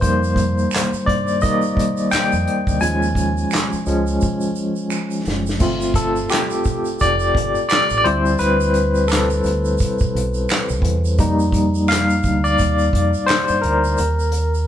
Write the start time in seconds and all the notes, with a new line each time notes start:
0.01 F2 D#3 G3 A#3 C5, kick, closed hi-hat, shaker
0.23 shaker
0.36 kick, closed hi-hat, shaker
0.58 shaker
0.71 finger snap, clap, shaker
0.75 snare, closed hi-hat
0.93 muted fingered electric bass stroke, shaker
1.06 G2 D5, kick, closed hi-hat
1.27 shaker
1.41 D#3 G3 A#3 D#5, kick, closed hi-hat, shaker
1.62 shaker
1.77 kick, closed hi-hat
1.97 shaker
2.11 G5, finger snap, muted fingered electric bass stroke, snare, clap, closed hi-hat, shaker
2.32 F2, shaker
2.47 closed hi-hat
2.67 D2, kick, shaker
2.81 D#2 F3 G#3 C#4 G#5, closed hi-hat, shaker
3.03 shaker
3.15 kick, closed hi-hat, shaker
3.37 shaker
3.51 finger snap, snare, clap, closed hi-hat, shaker
3.72 muted fingered electric bass stroke, shaker
3.86 C#2 F3 G#3 C#4, closed hi-hat, shaker
4.07 shaker
4.21 kick, shaker
4.41 shaker
4.55 shaker
4.76 shaker
4.90 finger snap, shaker
5.11 shaker
5.25 F#1, snare, shaker
5.46 snare, shaker
5.60 G1 A3 C4 F4, kick, crash, shaker
5.81 shaker
5.94 A4, kick, closed hi-hat, shaker
6.16 shaker
6.30 G4, finger snap, snare, clap, closed hi-hat, shaker
6.50 shaker
6.64 kick, closed hi-hat, shaker
6.85 shaker
6.99 F1 D5, kick, closed hi-hat, shaker
7.20 shaker
7.35 G1, kick, closed hi-hat
7.55 shaker
7.69 D5, finger snap, snare, clap, closed hi-hat, shaker
7.89 A1, shaker
7.98 D5
8.04 D2 G3 C4 E4 C5, closed hi-hat
8.26 shaker
8.38 D2 B4, closed hi-hat, shaker
8.60 shaker
8.74 closed hi-hat, shaker
8.95 shaker
9.08 A4, finger snap, shaker
9.12 snare, clap, closed hi-hat
9.30 shaker
9.44 D2, closed hi-hat, shaker
9.65 shaker
9.78 kick, closed hi-hat, shaker
9.99 kick, shaker
10.15 B1, closed hi-hat
10.34 shaker
10.49 finger snap, snare, clap, closed hi-hat, shaker
10.69 C2, shaker
10.82 E2, kick, closed hi-hat
11.05 shaker
11.18 F2 G3 A#3 D#4, kick, closed hi-hat, shaker
11.39 shaker
11.52 kick, closed hi-hat, shaker
11.75 shaker
11.88 F5, finger snap, clap, closed hi-hat, shaker
11.92 snare
12.09 shaker
12.23 D2, kick, closed hi-hat, shaker
12.44 D5, shaker
12.58 D#2, kick, closed hi-hat, shaker
12.79 shaker
12.93 F2, kick, closed hi-hat
13.14 shaker
13.26 C5, finger snap, snare, clap, closed hi-hat, shaker
13.48 G2, shaker
13.62 D2 A#4, closed hi-hat
13.84 shaker
13.97 D#2, closed hi-hat, shaker
14.19 shaker
14.32 closed hi-hat, shaker
14.54 shaker